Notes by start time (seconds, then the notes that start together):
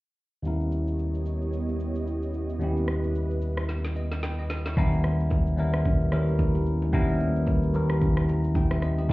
0.42 D#2 G3 B3 C#4 E4 G4 C#5 D#5, shaker
0.46 E4 A#4
0.61 shaker
0.72 shaker
0.87 shaker
0.99 shaker
1.14 shaker
1.25 shaker
1.42 shaker
1.53 shaker
1.69 shaker
1.80 shaker
1.95 shaker
2.07 shaker
2.23 shaker
2.34 shaker
2.49 shaker
2.59 D#2 G3 B3 C#4 B4, shaker
2.63 E4 G4
2.77 shaker
2.88 cross-stick, shaker
3.04 shaker
3.15 shaker
3.30 shaker
3.42 shaker
3.57 cross-stick, shaker
3.69 snare, shaker
3.85 snare, shaker
3.96 D#5, shaker
4.11 snare, shaker
4.23 B4 G5, snare, shaker
4.39 G4 D#5, shaker
4.50 snare, shaker
4.66 E4 C#5, snare, shaker
4.76 D#2 G3 B3 C#4 E4 A#4, kick, low conga, shaker
4.93 shaker
5.04 cross-stick, low bongo, shaker
5.20 shaker
5.31 kick, high bongo, shaker
5.47 shaker
5.57 D#2 G3 B3 C#4 E4 A#4, shaker
5.74 cross-stick, shaker
5.85 kick, low conga, shaker
6.01 shaker
6.11 D#2 G3 B3 C#4 E4 A#4, cross-stick, low bongo, shaker
6.28 shaker
6.39 kick, high bongo, low conga, shaker
6.55 low bongo, shaker
6.66 shaker
6.82 high bongo, shaker
6.92 D#2 G3 B3 C#4 E4 A#4, kick, low conga, shaker
7.09 shaker
7.20 low bongo, shaker
7.36 shaker
7.47 kick, high bongo, shaker
7.63 shaker
7.73 D#2 G3 B3 C#4 E4 A#4, shaker
7.90 cross-stick, shaker
8.01 kick, low conga, shaker
8.17 cross-stick, shaker
8.28 A#5, low bongo, shaker
8.44 shaker
8.55 B4 G5, kick, high bongo, low conga, shaker
8.71 G4 E5, cross-stick, low bongo, shaker
8.82 D#5, cross-stick, shaker
8.98 G4 D#5, high bongo, shaker
9.09 G#2 A#3, kick, low conga, shaker